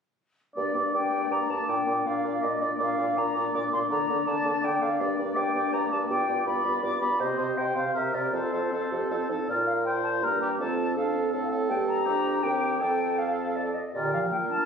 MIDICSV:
0, 0, Header, 1, 6, 480
1, 0, Start_track
1, 0, Key_signature, -2, "minor"
1, 0, Tempo, 373134
1, 724, Time_signature, 3, 2, 24, 8
1, 4554, Tempo, 366524
1, 6468, Key_signature, -2, "major"
1, 9834, Tempo, 380228
1, 12714, Tempo, 371978
1, 18909, End_track
2, 0, Start_track
2, 0, Title_t, "Flute"
2, 0, Program_c, 0, 73
2, 724, Note_on_c, 0, 74, 45
2, 1176, Note_off_c, 0, 74, 0
2, 1209, Note_on_c, 0, 79, 52
2, 1699, Note_on_c, 0, 82, 53
2, 1718, Note_off_c, 0, 79, 0
2, 1935, Note_on_c, 0, 81, 51
2, 1954, Note_off_c, 0, 82, 0
2, 2177, Note_on_c, 0, 79, 53
2, 2197, Note_off_c, 0, 81, 0
2, 2656, Note_on_c, 0, 77, 50
2, 2676, Note_off_c, 0, 79, 0
2, 3125, Note_on_c, 0, 75, 54
2, 3144, Note_off_c, 0, 77, 0
2, 3366, Note_on_c, 0, 74, 52
2, 3385, Note_off_c, 0, 75, 0
2, 3601, Note_off_c, 0, 74, 0
2, 3614, Note_on_c, 0, 77, 54
2, 4090, Note_on_c, 0, 82, 56
2, 4109, Note_off_c, 0, 77, 0
2, 4551, Note_off_c, 0, 82, 0
2, 4559, Note_on_c, 0, 86, 67
2, 4638, Note_off_c, 0, 86, 0
2, 4801, Note_on_c, 0, 84, 64
2, 4880, Note_off_c, 0, 84, 0
2, 5032, Note_on_c, 0, 82, 67
2, 5513, Note_on_c, 0, 81, 70
2, 5533, Note_off_c, 0, 82, 0
2, 6001, Note_on_c, 0, 79, 64
2, 6021, Note_off_c, 0, 81, 0
2, 6230, Note_on_c, 0, 77, 64
2, 6250, Note_off_c, 0, 79, 0
2, 6473, Note_on_c, 0, 74, 68
2, 6493, Note_off_c, 0, 77, 0
2, 6943, Note_on_c, 0, 79, 67
2, 6963, Note_off_c, 0, 74, 0
2, 7430, Note_on_c, 0, 82, 64
2, 7450, Note_off_c, 0, 79, 0
2, 7660, Note_off_c, 0, 82, 0
2, 7668, Note_on_c, 0, 81, 63
2, 7746, Note_off_c, 0, 81, 0
2, 7897, Note_on_c, 0, 79, 70
2, 8370, Note_off_c, 0, 79, 0
2, 8379, Note_on_c, 0, 83, 65
2, 8852, Note_off_c, 0, 83, 0
2, 8866, Note_on_c, 0, 86, 64
2, 9088, Note_off_c, 0, 86, 0
2, 9096, Note_on_c, 0, 83, 62
2, 9347, Note_on_c, 0, 75, 60
2, 9366, Note_off_c, 0, 83, 0
2, 9841, Note_on_c, 0, 79, 51
2, 9860, Note_off_c, 0, 75, 0
2, 10068, Note_on_c, 0, 77, 50
2, 10087, Note_off_c, 0, 79, 0
2, 10306, Note_off_c, 0, 77, 0
2, 10315, Note_on_c, 0, 76, 47
2, 10555, Note_on_c, 0, 74, 44
2, 10574, Note_off_c, 0, 76, 0
2, 10792, Note_off_c, 0, 74, 0
2, 10797, Note_on_c, 0, 72, 44
2, 11980, Note_off_c, 0, 72, 0
2, 12250, Note_on_c, 0, 74, 50
2, 12326, Note_off_c, 0, 74, 0
2, 12475, Note_on_c, 0, 77, 51
2, 12550, Note_off_c, 0, 77, 0
2, 12706, Note_on_c, 0, 79, 51
2, 12784, Note_off_c, 0, 79, 0
2, 12948, Note_on_c, 0, 81, 43
2, 13025, Note_off_c, 0, 81, 0
2, 13188, Note_on_c, 0, 82, 52
2, 13659, Note_off_c, 0, 82, 0
2, 13680, Note_on_c, 0, 81, 57
2, 14138, Note_off_c, 0, 81, 0
2, 14148, Note_on_c, 0, 77, 54
2, 14842, Note_off_c, 0, 77, 0
2, 15089, Note_on_c, 0, 79, 76
2, 15166, Note_off_c, 0, 79, 0
2, 15332, Note_on_c, 0, 82, 81
2, 16043, Note_on_c, 0, 79, 67
2, 16062, Note_off_c, 0, 82, 0
2, 16511, Note_off_c, 0, 79, 0
2, 16519, Note_on_c, 0, 79, 74
2, 17013, Note_on_c, 0, 77, 52
2, 17032, Note_off_c, 0, 79, 0
2, 17495, Note_on_c, 0, 74, 52
2, 17514, Note_off_c, 0, 77, 0
2, 17735, Note_on_c, 0, 75, 46
2, 17754, Note_off_c, 0, 74, 0
2, 17969, Note_off_c, 0, 75, 0
2, 17976, Note_on_c, 0, 74, 59
2, 18219, Note_off_c, 0, 74, 0
2, 18236, Note_on_c, 0, 77, 60
2, 18313, Note_off_c, 0, 77, 0
2, 18467, Note_on_c, 0, 79, 55
2, 18545, Note_off_c, 0, 79, 0
2, 18710, Note_on_c, 0, 81, 62
2, 18909, Note_off_c, 0, 81, 0
2, 18909, End_track
3, 0, Start_track
3, 0, Title_t, "Oboe"
3, 0, Program_c, 1, 68
3, 718, Note_on_c, 1, 74, 32
3, 959, Note_off_c, 1, 74, 0
3, 966, Note_on_c, 1, 74, 31
3, 1204, Note_off_c, 1, 74, 0
3, 1210, Note_on_c, 1, 74, 33
3, 1447, Note_off_c, 1, 74, 0
3, 1461, Note_on_c, 1, 74, 33
3, 1693, Note_off_c, 1, 74, 0
3, 1699, Note_on_c, 1, 74, 35
3, 1931, Note_off_c, 1, 74, 0
3, 1939, Note_on_c, 1, 74, 30
3, 2170, Note_off_c, 1, 74, 0
3, 2179, Note_on_c, 1, 74, 34
3, 2410, Note_off_c, 1, 74, 0
3, 2416, Note_on_c, 1, 74, 29
3, 2636, Note_off_c, 1, 74, 0
3, 2644, Note_on_c, 1, 74, 35
3, 2879, Note_off_c, 1, 74, 0
3, 2889, Note_on_c, 1, 74, 35
3, 3113, Note_off_c, 1, 74, 0
3, 3121, Note_on_c, 1, 74, 35
3, 3346, Note_off_c, 1, 74, 0
3, 3354, Note_on_c, 1, 74, 35
3, 3577, Note_off_c, 1, 74, 0
3, 3585, Note_on_c, 1, 74, 41
3, 3826, Note_off_c, 1, 74, 0
3, 3831, Note_on_c, 1, 74, 32
3, 4070, Note_off_c, 1, 74, 0
3, 4078, Note_on_c, 1, 74, 40
3, 4301, Note_off_c, 1, 74, 0
3, 4309, Note_on_c, 1, 74, 44
3, 4545, Note_off_c, 1, 74, 0
3, 4556, Note_on_c, 1, 74, 43
3, 4785, Note_off_c, 1, 74, 0
3, 4793, Note_on_c, 1, 74, 38
3, 5017, Note_off_c, 1, 74, 0
3, 5025, Note_on_c, 1, 74, 46
3, 5258, Note_off_c, 1, 74, 0
3, 5265, Note_on_c, 1, 74, 39
3, 5496, Note_off_c, 1, 74, 0
3, 5504, Note_on_c, 1, 74, 45
3, 5735, Note_off_c, 1, 74, 0
3, 5743, Note_on_c, 1, 74, 45
3, 5981, Note_off_c, 1, 74, 0
3, 5990, Note_on_c, 1, 74, 44
3, 6225, Note_off_c, 1, 74, 0
3, 6237, Note_on_c, 1, 74, 43
3, 6462, Note_off_c, 1, 74, 0
3, 6470, Note_on_c, 1, 74, 49
3, 6694, Note_off_c, 1, 74, 0
3, 6702, Note_on_c, 1, 74, 38
3, 6928, Note_off_c, 1, 74, 0
3, 6936, Note_on_c, 1, 74, 50
3, 7169, Note_off_c, 1, 74, 0
3, 7176, Note_on_c, 1, 74, 50
3, 7409, Note_off_c, 1, 74, 0
3, 7417, Note_on_c, 1, 74, 45
3, 7651, Note_off_c, 1, 74, 0
3, 7659, Note_on_c, 1, 74, 46
3, 7897, Note_off_c, 1, 74, 0
3, 7915, Note_on_c, 1, 74, 46
3, 8129, Note_off_c, 1, 74, 0
3, 8137, Note_on_c, 1, 74, 38
3, 8375, Note_off_c, 1, 74, 0
3, 8384, Note_on_c, 1, 74, 46
3, 8619, Note_off_c, 1, 74, 0
3, 8626, Note_on_c, 1, 74, 43
3, 8856, Note_off_c, 1, 74, 0
3, 8864, Note_on_c, 1, 74, 44
3, 9101, Note_off_c, 1, 74, 0
3, 9110, Note_on_c, 1, 74, 38
3, 9339, Note_off_c, 1, 74, 0
3, 9347, Note_on_c, 1, 72, 44
3, 9577, Note_off_c, 1, 72, 0
3, 9585, Note_on_c, 1, 72, 38
3, 9826, Note_off_c, 1, 72, 0
3, 9840, Note_on_c, 1, 72, 38
3, 10063, Note_off_c, 1, 72, 0
3, 10071, Note_on_c, 1, 72, 36
3, 10296, Note_off_c, 1, 72, 0
3, 10303, Note_on_c, 1, 70, 33
3, 10540, Note_off_c, 1, 70, 0
3, 10563, Note_on_c, 1, 70, 29
3, 10791, Note_off_c, 1, 70, 0
3, 10801, Note_on_c, 1, 69, 29
3, 11028, Note_off_c, 1, 69, 0
3, 11036, Note_on_c, 1, 69, 26
3, 11270, Note_off_c, 1, 69, 0
3, 11284, Note_on_c, 1, 69, 29
3, 11517, Note_off_c, 1, 69, 0
3, 11529, Note_on_c, 1, 69, 27
3, 11760, Note_off_c, 1, 69, 0
3, 11767, Note_on_c, 1, 69, 28
3, 12000, Note_off_c, 1, 69, 0
3, 12016, Note_on_c, 1, 69, 28
3, 12244, Note_off_c, 1, 69, 0
3, 12262, Note_on_c, 1, 70, 33
3, 12691, Note_off_c, 1, 70, 0
3, 12728, Note_on_c, 1, 72, 39
3, 13210, Note_on_c, 1, 70, 41
3, 13229, Note_off_c, 1, 72, 0
3, 13431, Note_off_c, 1, 70, 0
3, 13438, Note_on_c, 1, 67, 40
3, 13544, Note_off_c, 1, 67, 0
3, 13676, Note_on_c, 1, 69, 35
3, 14130, Note_off_c, 1, 69, 0
3, 14138, Note_on_c, 1, 69, 42
3, 14604, Note_off_c, 1, 69, 0
3, 14611, Note_on_c, 1, 69, 45
3, 14840, Note_off_c, 1, 69, 0
3, 14848, Note_on_c, 1, 69, 49
3, 15560, Note_on_c, 1, 67, 47
3, 15580, Note_off_c, 1, 69, 0
3, 16035, Note_off_c, 1, 67, 0
3, 16042, Note_on_c, 1, 67, 48
3, 16532, Note_on_c, 1, 69, 42
3, 16552, Note_off_c, 1, 67, 0
3, 17750, Note_off_c, 1, 69, 0
3, 17990, Note_on_c, 1, 70, 41
3, 18909, Note_off_c, 1, 70, 0
3, 18909, End_track
4, 0, Start_track
4, 0, Title_t, "Clarinet"
4, 0, Program_c, 2, 71
4, 719, Note_on_c, 2, 62, 33
4, 960, Note_off_c, 2, 62, 0
4, 965, Note_on_c, 2, 62, 34
4, 1199, Note_off_c, 2, 62, 0
4, 1207, Note_on_c, 2, 62, 35
4, 1445, Note_off_c, 2, 62, 0
4, 1456, Note_on_c, 2, 62, 32
4, 1683, Note_off_c, 2, 62, 0
4, 1691, Note_on_c, 2, 62, 34
4, 1923, Note_off_c, 2, 62, 0
4, 1931, Note_on_c, 2, 62, 30
4, 2165, Note_off_c, 2, 62, 0
4, 2171, Note_on_c, 2, 62, 41
4, 2400, Note_off_c, 2, 62, 0
4, 2408, Note_on_c, 2, 62, 34
4, 2644, Note_off_c, 2, 62, 0
4, 2654, Note_on_c, 2, 62, 36
4, 2882, Note_off_c, 2, 62, 0
4, 2889, Note_on_c, 2, 62, 36
4, 3119, Note_off_c, 2, 62, 0
4, 3136, Note_on_c, 2, 62, 40
4, 3356, Note_off_c, 2, 62, 0
4, 3364, Note_on_c, 2, 62, 32
4, 3587, Note_off_c, 2, 62, 0
4, 3594, Note_on_c, 2, 62, 43
4, 3831, Note_off_c, 2, 62, 0
4, 3839, Note_on_c, 2, 62, 41
4, 4070, Note_off_c, 2, 62, 0
4, 4078, Note_on_c, 2, 62, 41
4, 4305, Note_off_c, 2, 62, 0
4, 4313, Note_on_c, 2, 62, 42
4, 4547, Note_off_c, 2, 62, 0
4, 4558, Note_on_c, 2, 62, 42
4, 4782, Note_off_c, 2, 62, 0
4, 4789, Note_on_c, 2, 62, 40
4, 5018, Note_off_c, 2, 62, 0
4, 5026, Note_on_c, 2, 62, 53
4, 5265, Note_off_c, 2, 62, 0
4, 5279, Note_on_c, 2, 62, 46
4, 5506, Note_off_c, 2, 62, 0
4, 5514, Note_on_c, 2, 62, 47
4, 5747, Note_off_c, 2, 62, 0
4, 5760, Note_on_c, 2, 62, 44
4, 5984, Note_off_c, 2, 62, 0
4, 5992, Note_on_c, 2, 62, 45
4, 6226, Note_off_c, 2, 62, 0
4, 6235, Note_on_c, 2, 62, 39
4, 6466, Note_off_c, 2, 62, 0
4, 6475, Note_on_c, 2, 62, 54
4, 6704, Note_off_c, 2, 62, 0
4, 6712, Note_on_c, 2, 62, 47
4, 6942, Note_off_c, 2, 62, 0
4, 6951, Note_on_c, 2, 62, 48
4, 7175, Note_off_c, 2, 62, 0
4, 7182, Note_on_c, 2, 62, 46
4, 7419, Note_off_c, 2, 62, 0
4, 7429, Note_on_c, 2, 62, 46
4, 7663, Note_off_c, 2, 62, 0
4, 7668, Note_on_c, 2, 62, 41
4, 7902, Note_off_c, 2, 62, 0
4, 7911, Note_on_c, 2, 65, 51
4, 8143, Note_off_c, 2, 65, 0
4, 8148, Note_on_c, 2, 65, 44
4, 8378, Note_off_c, 2, 65, 0
4, 8385, Note_on_c, 2, 65, 43
4, 8620, Note_off_c, 2, 65, 0
4, 8629, Note_on_c, 2, 65, 43
4, 8862, Note_off_c, 2, 65, 0
4, 8875, Note_on_c, 2, 65, 40
4, 9106, Note_off_c, 2, 65, 0
4, 9119, Note_on_c, 2, 65, 34
4, 9350, Note_off_c, 2, 65, 0
4, 9362, Note_on_c, 2, 67, 46
4, 9593, Note_off_c, 2, 67, 0
4, 9610, Note_on_c, 2, 67, 41
4, 9839, Note_off_c, 2, 67, 0
4, 9848, Note_on_c, 2, 67, 33
4, 10063, Note_off_c, 2, 67, 0
4, 10071, Note_on_c, 2, 67, 33
4, 10303, Note_off_c, 2, 67, 0
4, 10312, Note_on_c, 2, 67, 30
4, 10544, Note_off_c, 2, 67, 0
4, 10558, Note_on_c, 2, 67, 28
4, 10788, Note_off_c, 2, 67, 0
4, 10798, Note_on_c, 2, 65, 36
4, 11030, Note_off_c, 2, 65, 0
4, 11044, Note_on_c, 2, 65, 32
4, 11274, Note_off_c, 2, 65, 0
4, 11285, Note_on_c, 2, 69, 36
4, 11505, Note_off_c, 2, 69, 0
4, 11523, Note_on_c, 2, 67, 36
4, 11756, Note_off_c, 2, 67, 0
4, 11776, Note_on_c, 2, 65, 35
4, 12018, Note_on_c, 2, 63, 30
4, 12037, Note_off_c, 2, 65, 0
4, 12250, Note_off_c, 2, 63, 0
4, 12263, Note_on_c, 2, 65, 36
4, 13207, Note_on_c, 2, 58, 40
4, 13227, Note_off_c, 2, 65, 0
4, 13666, Note_off_c, 2, 58, 0
4, 13674, Note_on_c, 2, 60, 40
4, 14143, Note_on_c, 2, 62, 43
4, 14163, Note_off_c, 2, 60, 0
4, 14376, Note_on_c, 2, 60, 42
4, 14395, Note_off_c, 2, 62, 0
4, 15092, Note_on_c, 2, 58, 48
4, 15111, Note_off_c, 2, 60, 0
4, 15566, Note_on_c, 2, 62, 51
4, 15585, Note_off_c, 2, 58, 0
4, 16048, Note_on_c, 2, 60, 50
4, 16068, Note_off_c, 2, 62, 0
4, 16520, Note_off_c, 2, 60, 0
4, 16528, Note_on_c, 2, 60, 47
4, 17723, Note_off_c, 2, 60, 0
4, 18004, Note_on_c, 2, 50, 47
4, 18238, Note_on_c, 2, 53, 45
4, 18258, Note_off_c, 2, 50, 0
4, 18479, Note_on_c, 2, 58, 43
4, 18499, Note_off_c, 2, 53, 0
4, 18713, Note_on_c, 2, 62, 40
4, 18732, Note_off_c, 2, 58, 0
4, 18909, Note_off_c, 2, 62, 0
4, 18909, End_track
5, 0, Start_track
5, 0, Title_t, "French horn"
5, 0, Program_c, 3, 60
5, 727, Note_on_c, 3, 58, 30
5, 964, Note_off_c, 3, 58, 0
5, 971, Note_on_c, 3, 58, 33
5, 1197, Note_off_c, 3, 58, 0
5, 1205, Note_on_c, 3, 58, 27
5, 1433, Note_off_c, 3, 58, 0
5, 1440, Note_on_c, 3, 58, 30
5, 1658, Note_off_c, 3, 58, 0
5, 1666, Note_on_c, 3, 58, 36
5, 1909, Note_off_c, 3, 58, 0
5, 1916, Note_on_c, 3, 58, 33
5, 2150, Note_off_c, 3, 58, 0
5, 2158, Note_on_c, 3, 58, 37
5, 2388, Note_off_c, 3, 58, 0
5, 2396, Note_on_c, 3, 58, 35
5, 2638, Note_off_c, 3, 58, 0
5, 2645, Note_on_c, 3, 58, 31
5, 2868, Note_off_c, 3, 58, 0
5, 2875, Note_on_c, 3, 58, 34
5, 3100, Note_off_c, 3, 58, 0
5, 3108, Note_on_c, 3, 58, 37
5, 3325, Note_off_c, 3, 58, 0
5, 3333, Note_on_c, 3, 58, 34
5, 3579, Note_off_c, 3, 58, 0
5, 3584, Note_on_c, 3, 58, 39
5, 3823, Note_off_c, 3, 58, 0
5, 3830, Note_on_c, 3, 58, 38
5, 4056, Note_off_c, 3, 58, 0
5, 4064, Note_on_c, 3, 58, 36
5, 4299, Note_off_c, 3, 58, 0
5, 4307, Note_on_c, 3, 58, 38
5, 4541, Note_off_c, 3, 58, 0
5, 4549, Note_on_c, 3, 58, 42
5, 4787, Note_off_c, 3, 58, 0
5, 4792, Note_on_c, 3, 58, 37
5, 5025, Note_off_c, 3, 58, 0
5, 5033, Note_on_c, 3, 58, 39
5, 5268, Note_off_c, 3, 58, 0
5, 5275, Note_on_c, 3, 58, 42
5, 5494, Note_off_c, 3, 58, 0
5, 5502, Note_on_c, 3, 58, 39
5, 5731, Note_off_c, 3, 58, 0
5, 5739, Note_on_c, 3, 58, 46
5, 5975, Note_off_c, 3, 58, 0
5, 5982, Note_on_c, 3, 58, 44
5, 6221, Note_off_c, 3, 58, 0
5, 6235, Note_on_c, 3, 58, 42
5, 6458, Note_off_c, 3, 58, 0
5, 6466, Note_on_c, 3, 58, 44
5, 6700, Note_off_c, 3, 58, 0
5, 6709, Note_on_c, 3, 58, 48
5, 6930, Note_off_c, 3, 58, 0
5, 6938, Note_on_c, 3, 58, 37
5, 7174, Note_off_c, 3, 58, 0
5, 7181, Note_on_c, 3, 58, 43
5, 7409, Note_off_c, 3, 58, 0
5, 7417, Note_on_c, 3, 58, 46
5, 7650, Note_off_c, 3, 58, 0
5, 7658, Note_on_c, 3, 58, 42
5, 7891, Note_off_c, 3, 58, 0
5, 7899, Note_on_c, 3, 59, 47
5, 8134, Note_off_c, 3, 59, 0
5, 8141, Note_on_c, 3, 59, 43
5, 8368, Note_off_c, 3, 59, 0
5, 8376, Note_on_c, 3, 59, 37
5, 8615, Note_off_c, 3, 59, 0
5, 8625, Note_on_c, 3, 59, 42
5, 8856, Note_off_c, 3, 59, 0
5, 8864, Note_on_c, 3, 59, 44
5, 9088, Note_off_c, 3, 59, 0
5, 9095, Note_on_c, 3, 59, 38
5, 9338, Note_off_c, 3, 59, 0
5, 9346, Note_on_c, 3, 60, 42
5, 9584, Note_off_c, 3, 60, 0
5, 9597, Note_on_c, 3, 60, 41
5, 9832, Note_off_c, 3, 60, 0
5, 9841, Note_on_c, 3, 60, 32
5, 10069, Note_off_c, 3, 60, 0
5, 10078, Note_on_c, 3, 60, 31
5, 10296, Note_off_c, 3, 60, 0
5, 10304, Note_on_c, 3, 60, 32
5, 10540, Note_off_c, 3, 60, 0
5, 10549, Note_on_c, 3, 60, 26
5, 10778, Note_off_c, 3, 60, 0
5, 10785, Note_on_c, 3, 60, 30
5, 11023, Note_off_c, 3, 60, 0
5, 11036, Note_on_c, 3, 60, 27
5, 11271, Note_off_c, 3, 60, 0
5, 11282, Note_on_c, 3, 60, 26
5, 11515, Note_off_c, 3, 60, 0
5, 11528, Note_on_c, 3, 60, 28
5, 11759, Note_off_c, 3, 60, 0
5, 11768, Note_on_c, 3, 60, 28
5, 12000, Note_off_c, 3, 60, 0
5, 12009, Note_on_c, 3, 60, 27
5, 12241, Note_off_c, 3, 60, 0
5, 12256, Note_on_c, 3, 65, 39
5, 12978, Note_off_c, 3, 65, 0
5, 13198, Note_on_c, 3, 62, 43
5, 13663, Note_off_c, 3, 62, 0
5, 13673, Note_on_c, 3, 65, 42
5, 14152, Note_on_c, 3, 69, 49
5, 14171, Note_off_c, 3, 65, 0
5, 14610, Note_off_c, 3, 69, 0
5, 14618, Note_on_c, 3, 69, 59
5, 15097, Note_on_c, 3, 67, 59
5, 15117, Note_off_c, 3, 69, 0
5, 16038, Note_on_c, 3, 70, 63
5, 16057, Note_off_c, 3, 67, 0
5, 16532, Note_on_c, 3, 69, 46
5, 16551, Note_off_c, 3, 70, 0
5, 17749, Note_off_c, 3, 69, 0
5, 17989, Note_on_c, 3, 67, 46
5, 18468, Note_on_c, 3, 65, 41
5, 18488, Note_off_c, 3, 67, 0
5, 18909, Note_off_c, 3, 65, 0
5, 18909, End_track
6, 0, Start_track
6, 0, Title_t, "Bassoon"
6, 0, Program_c, 4, 70
6, 727, Note_on_c, 4, 43, 35
6, 836, Note_off_c, 4, 43, 0
6, 958, Note_on_c, 4, 43, 34
6, 1069, Note_off_c, 4, 43, 0
6, 1203, Note_on_c, 4, 43, 34
6, 1313, Note_off_c, 4, 43, 0
6, 1443, Note_on_c, 4, 43, 32
6, 1553, Note_off_c, 4, 43, 0
6, 1677, Note_on_c, 4, 43, 34
6, 1789, Note_off_c, 4, 43, 0
6, 1926, Note_on_c, 4, 43, 34
6, 2034, Note_off_c, 4, 43, 0
6, 2161, Note_on_c, 4, 46, 44
6, 2271, Note_off_c, 4, 46, 0
6, 2402, Note_on_c, 4, 46, 40
6, 2511, Note_off_c, 4, 46, 0
6, 2648, Note_on_c, 4, 46, 38
6, 2755, Note_off_c, 4, 46, 0
6, 2888, Note_on_c, 4, 46, 34
6, 2994, Note_off_c, 4, 46, 0
6, 3124, Note_on_c, 4, 46, 41
6, 3230, Note_off_c, 4, 46, 0
6, 3362, Note_on_c, 4, 46, 36
6, 3469, Note_off_c, 4, 46, 0
6, 3601, Note_on_c, 4, 46, 49
6, 3708, Note_off_c, 4, 46, 0
6, 3838, Note_on_c, 4, 46, 44
6, 3946, Note_off_c, 4, 46, 0
6, 4079, Note_on_c, 4, 46, 46
6, 4186, Note_off_c, 4, 46, 0
6, 4322, Note_on_c, 4, 46, 45
6, 4428, Note_off_c, 4, 46, 0
6, 4562, Note_on_c, 4, 46, 46
6, 4668, Note_off_c, 4, 46, 0
6, 4797, Note_on_c, 4, 46, 44
6, 4905, Note_off_c, 4, 46, 0
6, 5042, Note_on_c, 4, 50, 58
6, 5148, Note_off_c, 4, 50, 0
6, 5283, Note_on_c, 4, 50, 50
6, 5389, Note_off_c, 4, 50, 0
6, 5519, Note_on_c, 4, 50, 53
6, 5625, Note_off_c, 4, 50, 0
6, 5748, Note_on_c, 4, 50, 45
6, 5856, Note_off_c, 4, 50, 0
6, 5987, Note_on_c, 4, 50, 53
6, 6096, Note_off_c, 4, 50, 0
6, 6227, Note_on_c, 4, 50, 49
6, 6335, Note_off_c, 4, 50, 0
6, 6474, Note_on_c, 4, 43, 60
6, 6579, Note_off_c, 4, 43, 0
6, 6711, Note_on_c, 4, 43, 46
6, 6817, Note_off_c, 4, 43, 0
6, 6944, Note_on_c, 4, 43, 55
6, 7052, Note_off_c, 4, 43, 0
6, 7184, Note_on_c, 4, 43, 43
6, 7293, Note_off_c, 4, 43, 0
6, 7423, Note_on_c, 4, 43, 53
6, 7532, Note_off_c, 4, 43, 0
6, 7670, Note_on_c, 4, 43, 47
6, 7777, Note_off_c, 4, 43, 0
6, 7907, Note_on_c, 4, 43, 52
6, 8014, Note_off_c, 4, 43, 0
6, 8150, Note_on_c, 4, 43, 46
6, 8257, Note_off_c, 4, 43, 0
6, 8384, Note_on_c, 4, 43, 46
6, 8492, Note_off_c, 4, 43, 0
6, 8618, Note_on_c, 4, 43, 44
6, 8728, Note_off_c, 4, 43, 0
6, 8860, Note_on_c, 4, 43, 47
6, 8969, Note_off_c, 4, 43, 0
6, 9106, Note_on_c, 4, 43, 43
6, 9214, Note_off_c, 4, 43, 0
6, 9345, Note_on_c, 4, 48, 48
6, 9455, Note_off_c, 4, 48, 0
6, 9594, Note_on_c, 4, 48, 42
6, 9703, Note_off_c, 4, 48, 0
6, 9837, Note_on_c, 4, 48, 38
6, 9942, Note_off_c, 4, 48, 0
6, 10068, Note_on_c, 4, 48, 38
6, 10175, Note_off_c, 4, 48, 0
6, 10306, Note_on_c, 4, 48, 35
6, 10414, Note_off_c, 4, 48, 0
6, 10548, Note_on_c, 4, 48, 33
6, 10656, Note_off_c, 4, 48, 0
6, 10791, Note_on_c, 4, 41, 39
6, 10899, Note_off_c, 4, 41, 0
6, 11035, Note_on_c, 4, 41, 33
6, 11143, Note_off_c, 4, 41, 0
6, 11278, Note_on_c, 4, 41, 30
6, 11386, Note_off_c, 4, 41, 0
6, 11535, Note_on_c, 4, 41, 29
6, 11640, Note_off_c, 4, 41, 0
6, 11773, Note_on_c, 4, 41, 31
6, 11878, Note_off_c, 4, 41, 0
6, 12002, Note_on_c, 4, 41, 27
6, 12110, Note_off_c, 4, 41, 0
6, 12255, Note_on_c, 4, 46, 40
6, 13204, Note_on_c, 4, 43, 37
6, 13224, Note_off_c, 4, 46, 0
6, 13677, Note_on_c, 4, 41, 40
6, 13696, Note_off_c, 4, 43, 0
6, 14624, Note_on_c, 4, 45, 47
6, 14643, Note_off_c, 4, 41, 0
6, 15093, Note_on_c, 4, 43, 57
6, 15112, Note_off_c, 4, 45, 0
6, 15571, Note_on_c, 4, 41, 50
6, 15591, Note_off_c, 4, 43, 0
6, 16038, Note_off_c, 4, 41, 0
6, 16045, Note_on_c, 4, 39, 49
6, 16526, Note_on_c, 4, 41, 46
6, 16546, Note_off_c, 4, 39, 0
6, 17747, Note_off_c, 4, 41, 0
6, 17991, Note_on_c, 4, 46, 53
6, 18392, Note_off_c, 4, 46, 0
6, 18909, End_track
0, 0, End_of_file